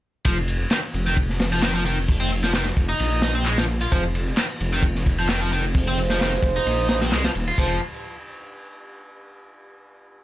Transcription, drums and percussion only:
0.25 kick, ride, shaker
0.38 shaker
0.48 ride, shaker
0.61 shaker
0.71 snare, clap, ride, shaker
0.84 shaker
0.94 ride, shaker
1.06 ride, shaker
1.17 kick, ride, shaker
1.29 snare, shaker
1.39 snare, ride, shaker
1.52 shaker
1.62 snare, clap, ride, shaker
1.75 shaker
1.86 ride, shaker
1.97 ride, shaker
2.08 kick, open hi-hat, shaker
2.20 ride, shaker
2.31 ride, shaker
2.43 snare, shaker
2.54 snare, clap, ride, shaker
2.65 snare, shaker
2.77 kick, ride, shaker
2.89 shaker
3.00 ride, shaker
3.12 shaker
3.22 snare, ride, shaker
3.35 shaker
3.46 clap, ride, shaker
3.58 snare, ride, shaker
3.69 shaker
3.81 ride, shaker
3.92 kick, ride, shaker
4.04 shaker
4.14 ride, shaker
4.27 shaker
4.37 snare, clap, ride, shaker
4.50 shaker
4.60 ride, shaker
4.73 ride, shaker
4.83 kick, ride, shaker
4.95 snare, shaker
5.06 kick, ride, shaker
5.18 shaker
5.29 snare, clap, ride, shaker
5.41 shaker
5.52 ride, shaker
5.64 ride, shaker
5.75 kick, open hi-hat, shaker
5.87 ride, shaker
5.98 ride, shaker
6.10 snare, shaker
6.21 snare, clap, ride, shaker
6.33 snare, shaker
6.43 kick, ride, shaker
6.56 shaker
6.67 ride, shaker
6.79 shaker
6.89 snare, ride, shaker
7.01 snare, ride, shaker
7.12 snare, clap, ride, shaker
7.24 snare, ride, shaker
7.35 ride, shaker
7.47 ride, shaker
7.58 kick, crash

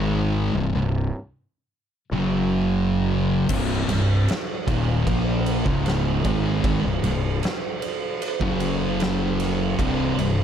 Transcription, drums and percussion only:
3.49 kick, crash
3.89 ride
4.28 snare, ride
4.68 kick, ride
5.07 kick, ride
5.46 ride
5.66 kick
5.86 snare, ride
6.25 kick, ride
6.64 kick, ride
7.04 ride
7.43 snare, ride
7.82 ride
8.22 ride
8.41 kick
8.60 ride
9.00 snare, ride
9.40 snare, ride
9.79 kick, ride
10.19 ride

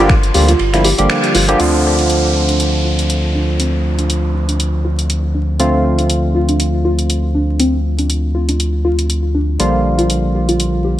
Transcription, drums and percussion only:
0.09 finger snap, kick, snare, ride
0.23 closed hi-hat
0.34 open hi-hat, ride
0.48 snare, closed hi-hat
0.59 ride
0.74 finger snap, snare, closed hi-hat
0.84 open hi-hat, ride
0.98 closed hi-hat
1.09 finger snap, snare, ride
1.24 closed hi-hat
1.35 open hi-hat, ride
1.49 closed hi-hat
1.60 closed hi-hat
1.99 closed hi-hat
2.10 closed hi-hat
2.49 closed hi-hat
2.60 closed hi-hat
2.99 closed hi-hat
3.10 closed hi-hat
3.60 closed hi-hat
3.99 closed hi-hat
4.10 closed hi-hat
4.49 closed hi-hat
4.60 closed hi-hat
4.99 closed hi-hat
5.10 closed hi-hat
5.60 closed hi-hat
5.99 closed hi-hat
6.10 closed hi-hat
6.49 closed hi-hat
6.60 closed hi-hat
6.99 closed hi-hat
7.10 closed hi-hat
7.60 closed hi-hat
7.99 closed hi-hat
8.10 closed hi-hat
8.49 closed hi-hat
8.60 closed hi-hat
8.99 closed hi-hat
9.10 closed hi-hat
9.60 closed hi-hat
9.99 closed hi-hat
10.10 closed hi-hat
10.49 closed hi-hat
10.60 closed hi-hat

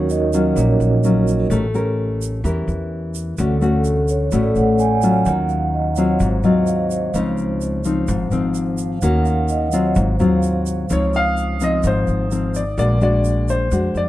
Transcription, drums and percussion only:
0.10 shaker
0.33 shaker
0.57 shaker
0.81 shaker
1.04 shaker
1.28 shaker
1.51 shaker
1.75 shaker
2.22 shaker
2.45 shaker
2.68 shaker
3.15 shaker
3.38 shaker
3.62 shaker
3.84 shaker
4.08 shaker
4.32 shaker
4.56 shaker
4.79 shaker
5.02 shaker
5.25 shaker
5.49 shaker
5.96 shaker
6.20 shaker
6.43 shaker
6.67 shaker
6.91 shaker
7.14 shaker
7.38 shaker
7.61 shaker
7.84 shaker
8.08 shaker
8.31 shaker
8.55 shaker
8.78 shaker
9.02 shaker
9.25 shaker
9.48 shaker
9.72 shaker
9.95 shaker
10.20 shaker
10.43 shaker
10.66 shaker
10.90 shaker
11.14 shaker
11.37 shaker
11.60 shaker
11.83 shaker
12.07 shaker
12.31 shaker
12.55 shaker
12.78 shaker
13.01 shaker
13.25 shaker
13.48 shaker
13.72 shaker
13.95 shaker

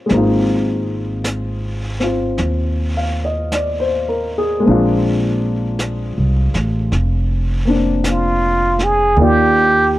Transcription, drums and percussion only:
0.09 brush sweep, snare
1.24 brush sweep, snare, hi-hat pedal
2.00 snare
2.38 brush sweep, snare
3.52 brush sweep, snare, hi-hat pedal
4.65 brush sweep
5.79 brush sweep, snare, hi-hat pedal
6.54 snare
6.92 brush sweep, snare
8.04 brush sweep, snare, hi-hat pedal
8.79 snare
9.16 brush sweep

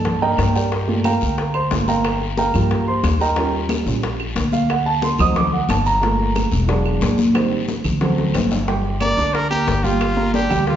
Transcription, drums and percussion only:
0.05 high bongo, high conga, low conga, long guiro
0.22 high bongo, high conga
0.38 high bongo, low bongo, high conga, short guiro, claves
0.55 high bongo, high conga, short guiro
0.72 high bongo, long guiro
0.88 high bongo, high conga
1.04 high bongo, high conga, short guiro, claves
1.21 high conga, short guiro
1.38 high bongo, high conga, long guiro
1.54 high bongo, high conga, claves
1.71 high bongo, low bongo, high conga, short guiro
1.88 high bongo, high conga, short guiro
2.04 high bongo, high conga, long guiro, claves
2.21 high bongo, high conga
2.37 high bongo, high conga, short guiro
2.54 high conga, low conga, short guiro, claves
2.71 high bongo, high conga, long guiro
2.88 high bongo, high conga
3.04 high bongo, low bongo, high conga, short guiro, claves
3.20 high bongo, high conga, short guiro
3.36 high bongo, high conga, long guiro
3.53 high bongo, high conga
3.69 high bongo, high conga, short guiro, claves
3.86 high conga, short guiro
4.02 high bongo, high conga, long guiro
4.19 high bongo, high conga, claves
4.36 high bongo, low bongo, high conga, short guiro
4.52 high bongo, high conga, short guiro
4.69 high bongo, high conga, long guiro, claves
4.85 high bongo, high conga
5.02 high bongo, high conga, short guiro
5.19 high conga, low conga, short guiro, claves
5.35 high bongo, high conga, low conga, long guiro
5.53 high bongo, high conga
5.69 high bongo, low bongo, high conga, short guiro, claves
5.85 high bongo, high conga, short guiro
6.02 high bongo, long guiro
6.19 high bongo, high conga
6.35 high bongo, high conga, short guiro, claves
6.52 high conga, short guiro
6.68 high bongo, long guiro
6.85 high bongo, high conga, claves
7.01 high bongo, low bongo, high conga, short guiro
7.18 high bongo, high conga, short guiro
7.34 high bongo, high conga, long guiro, claves
7.52 high bongo, high conga
7.68 high bongo, high conga, short guiro
7.84 high conga, low conga, short guiro, claves
8.01 high bongo, high conga, low conga, long guiro
8.18 high bongo, high conga
8.34 low bongo, high conga, short guiro, claves
8.51 low bongo, high conga, short guiro
8.67 high bongo, high conga, long guiro
8.84 high bongo, high conga
9.00 high bongo, high conga, short guiro, claves
9.17 high conga, short guiro
9.34 high bongo, high conga, long guiro
9.50 high bongo, high conga, claves
9.67 high bongo, low bongo, high conga, short guiro
9.84 high bongo, high conga, short guiro
10.01 high bongo, high conga, long guiro, claves
10.18 high bongo
10.34 high bongo, high conga, short guiro
10.50 high conga, low conga, short guiro, claves
10.67 high bongo, high conga, low conga, long guiro

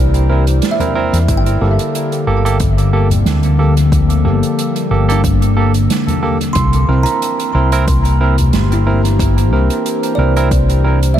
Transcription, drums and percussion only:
0.14 closed hi-hat
0.47 closed hi-hat
0.62 snare, closed hi-hat
0.80 closed hi-hat, mid tom
1.14 closed hi-hat
1.28 kick, closed hi-hat
1.46 closed hi-hat
1.79 closed hi-hat
1.95 closed hi-hat
2.12 closed hi-hat
2.46 closed hi-hat
2.60 kick, closed hi-hat
2.78 closed hi-hat
3.10 closed hi-hat, mid tom
3.26 snare, closed hi-hat
3.43 closed hi-hat
3.77 closed hi-hat
3.92 kick, closed hi-hat
4.10 closed hi-hat
4.43 closed hi-hat
4.59 closed hi-hat
4.76 closed hi-hat
5.10 closed hi-hat
5.24 kick, closed hi-hat
5.42 closed hi-hat
5.74 closed hi-hat
5.90 snare, closed hi-hat
6.08 closed hi-hat, mid tom
6.41 closed hi-hat
6.55 kick, closed hi-hat
6.73 closed hi-hat
7.06 closed hi-hat
7.22 closed hi-hat
7.40 closed hi-hat
7.72 closed hi-hat
7.88 kick, closed hi-hat
8.05 closed hi-hat
8.38 closed hi-hat, mid tom
8.53 snare, closed hi-hat
8.72 closed hi-hat
9.05 closed hi-hat
9.19 kick, closed hi-hat
9.38 closed hi-hat
9.70 closed hi-hat
9.86 closed hi-hat
10.03 closed hi-hat
10.37 closed hi-hat
10.51 kick, closed hi-hat
10.70 closed hi-hat
11.03 closed hi-hat

